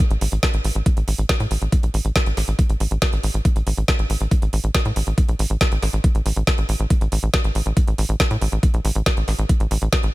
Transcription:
0.11 A1, closed hi-hat
0.21 A1, open hi-hat
0.32 A1, closed hi-hat
0.43 kick, snare, closed hi-hat
0.54 A1, closed hi-hat
0.64 A1, open hi-hat
0.75 A1, closed hi-hat
0.86 kick, closed hi-hat
0.97 A1, closed hi-hat
1.08 A1, open hi-hat
1.18 A1, closed hi-hat
1.29 kick, snare, closed hi-hat
1.40 A2, closed hi-hat
1.51 A1, open hi-hat
1.62 A1, closed hi-hat
1.72 kick, closed hi-hat
1.83 A#1, closed hi-hat
1.94 A1, open hi-hat
2.05 A1, closed hi-hat
2.16 kick, snare, closed hi-hat
2.26 A1, closed hi-hat
2.37 A1, snare, open hi-hat
2.48 A1, closed hi-hat
2.59 kick, closed hi-hat
2.70 A1, closed hi-hat
2.80 A1, open hi-hat
2.91 A1, closed hi-hat
3.02 kick, snare, closed hi-hat
3.13 A1, closed hi-hat
3.23 A1, open hi-hat
3.34 A1, closed hi-hat
3.45 kick, closed hi-hat
3.56 A1, closed hi-hat
3.67 A1, open hi-hat
3.77 A1, closed hi-hat
3.88 kick, snare, closed hi-hat
3.99 A1, closed hi-hat
4.10 A1, open hi-hat
4.21 A1, closed hi-hat
4.31 kick, closed hi-hat
4.42 A1, closed hi-hat
4.53 A1, open hi-hat
4.64 A1, closed hi-hat
4.75 kick, snare, closed hi-hat
4.85 A2, closed hi-hat
4.96 A1, open hi-hat
5.07 A1, closed hi-hat
5.18 kick, closed hi-hat
5.29 A#1, closed hi-hat
5.39 A1, open hi-hat
5.50 A1, closed hi-hat
5.61 kick, snare, closed hi-hat
5.72 A1, closed hi-hat
5.82 A1, snare, open hi-hat
5.93 A1, closed hi-hat
6.04 kick, closed hi-hat
6.15 A1, closed hi-hat
6.26 A1, open hi-hat
6.36 A1, closed hi-hat
6.47 kick, snare, closed hi-hat
6.58 A1, closed hi-hat
6.69 A1, open hi-hat
6.80 A1, closed hi-hat
6.90 kick, closed hi-hat
7.01 A1, closed hi-hat
7.12 A1, open hi-hat
7.23 A1, closed hi-hat
7.34 kick, snare, closed hi-hat
7.44 A1, closed hi-hat
7.55 A1, open hi-hat
7.66 A1, closed hi-hat
7.77 kick, closed hi-hat
7.87 A1, closed hi-hat
7.98 A1, open hi-hat
8.09 A1, closed hi-hat
8.20 kick, snare, closed hi-hat
8.31 A2, closed hi-hat
8.41 A1, open hi-hat
8.52 A1, closed hi-hat
8.63 kick, closed hi-hat
8.74 A#1, closed hi-hat
8.85 A1, open hi-hat
8.95 A1, closed hi-hat
9.06 kick, snare, closed hi-hat
9.17 A1, closed hi-hat
9.28 A1, snare, open hi-hat
9.39 A1, closed hi-hat
9.49 kick, closed hi-hat
9.60 A1, closed hi-hat
9.71 A1, open hi-hat
9.82 A1, closed hi-hat
9.93 kick, snare, closed hi-hat
10.03 A1, closed hi-hat

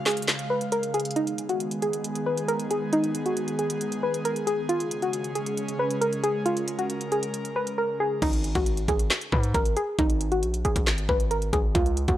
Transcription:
Already playing: C#3 G#3 F5
0.06 G#4, snare, clap, closed hi-hat, open hi-hat
0.11 closed hi-hat
0.17 closed hi-hat
0.22 closed hi-hat
0.28 snare, clap, closed hi-hat
0.39 closed hi-hat
0.50 B4
0.61 closed hi-hat
0.72 A#4, closed hi-hat
0.83 closed hi-hat
0.94 G#4, closed hi-hat
1.00 closed hi-hat
1.05 closed hi-hat
1.11 closed hi-hat
1.16 D#3 G#3 B3 D#4 G#4, closed hi-hat
1.27 closed hi-hat
1.38 closed hi-hat
1.49 F#4, closed hi-hat
1.60 closed hi-hat
1.71 closed hi-hat
1.82 G#4, closed hi-hat
1.93 closed hi-hat
2.04 closed hi-hat
2.15 closed hi-hat
2.26 B4
2.38 closed hi-hat
2.48 A#4, closed hi-hat
2.60 closed hi-hat
2.71 G#4, closed hi-hat
2.93 D#4, closed hi-hat
3.04 closed hi-hat
3.15 closed hi-hat
3.26 F#4, closed hi-hat
3.37 closed hi-hat
3.48 closed hi-hat
3.59 G#4, closed hi-hat
3.70 closed hi-hat
3.81 closed hi-hat
3.92 closed hi-hat
4.03 B4
4.14 closed hi-hat
4.25 A#4, closed hi-hat
4.36 closed hi-hat
4.47 G#4, closed hi-hat
4.69 C#3 G#3 C#4 F4, closed hi-hat
4.80 closed hi-hat
4.91 closed hi-hat
5.02 F#4, closed hi-hat
5.13 closed hi-hat
5.24 closed hi-hat
5.35 G#4, closed hi-hat
5.46 closed hi-hat
5.57 closed hi-hat
5.68 closed hi-hat
5.79 B4
5.90 closed hi-hat
6.01 A#4, closed hi-hat
6.13 closed hi-hat
6.23 G#4, closed hi-hat
6.46 F4 A#4, closed hi-hat
6.57 closed hi-hat
6.68 closed hi-hat
6.79 F#4, closed hi-hat
6.90 closed hi-hat
7.01 closed hi-hat
7.12 G#4, closed hi-hat
7.23 closed hi-hat
7.34 closed hi-hat
7.45 closed hi-hat
7.56 B4
7.67 closed hi-hat
7.78 A#4
8.00 G#4
8.22 G#1 D#4, kick, closed hi-hat, crash
8.33 closed hi-hat
8.44 closed hi-hat
8.55 G#1 F#4, kick, closed hi-hat
8.66 closed hi-hat
8.77 closed hi-hat
8.88 G#1 G#4, kick, closed hi-hat
8.99 closed hi-hat
9.10 snare, clap, closed hi-hat
9.21 closed hi-hat
9.32 G#2 B4, kick
9.43 closed hi-hat
9.54 G#1 A#4, kick, closed hi-hat
9.65 closed hi-hat
9.77 G#4, closed hi-hat
9.99 G#1 D#4, kick, closed hi-hat
10.10 closed hi-hat
10.21 closed hi-hat
10.32 F#4, closed hi-hat
10.43 A#1, closed hi-hat
10.54 closed hi-hat
10.65 G#1 G#4, closed hi-hat
10.76 G#1, kick, closed hi-hat
10.87 snare, clap, closed hi-hat
10.98 closed hi-hat
11.09 G#1 B4, kick
11.20 closed hi-hat
11.31 A#4, closed hi-hat
11.42 closed hi-hat
11.53 G#1 G#4, kick, closed hi-hat
11.75 C#2 F4, kick, closed hi-hat
11.86 closed hi-hat
11.97 closed hi-hat
12.08 C#2 F#4, kick, closed hi-hat

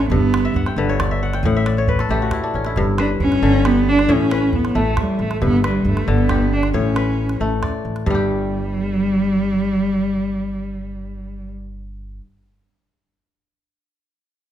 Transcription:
Already playing: A1 A2 A3 B4 D5
0.00 calabash click
0.10 G1 G2 B3, calabash thump
0.34 calabash click
0.45 E5
0.54 G1 F#5, calabash thump
0.66 G5, calabash click
0.76 G1 D3 B4
0.89 C#5
1.00 D5, calabash thump, calabash click
1.11 E5
1.23 F#5
1.33 G5, calabash click
1.43 A1 A2 F#5, calabash thump
1.55 E5, calabash click
1.66 D5, calabash click
1.77 C#5, calabash click
1.88 B4, calabash thump
1.99 A4, calabash click
2.09 A1 A3 G4
2.21 F#4, calabash click
2.31 E4, calabash thump, calabash click
2.44 D4
2.54 A1 C#4, calabash click
2.65 E4, calabash click
2.76 G1 G2, calabash thump
2.98 D4 B4, calabash click
3.20 G1 C#4, calabash thump
3.32 calabash click
3.42 G1 D3
3.65 B3 G4, calabash click
3.89 D4
3.99 calabash click
4.09 A1 A2 C#4 C#5, calabash thump
4.21 calabash click
4.31 B4, calabash click
4.42 calabash click
4.53 B3, calabash thump
4.65 calabash click
4.75 A1 A3
4.86 calabash click
4.97 G3, calabash thump, calabash click
5.19 A1 A3, calabash click
5.31 calabash click
5.42 G1 G2 B3, calabash thump
5.53 calabash click
5.64 G3 B4, calabash click
5.85 G1, calabash thump
5.89 A3
5.97 calabash click
6.07 G1 D3 B3, calabash click
6.18 calabash click
6.29 G4, calabash thump, calabash click
6.52 D4, calabash click
6.63 calabash click
6.74 A1 A2 C#4 C#5, calabash thump
6.96 B4, calabash click
7.29 calabash click
7.40 A1 A3, calabash click
7.63 D5, calabash thump, calabash click
7.85 A1
7.96 calabash click
8.06 G1 G2 G3, calabash thump
8.10 G3
8.15 G4

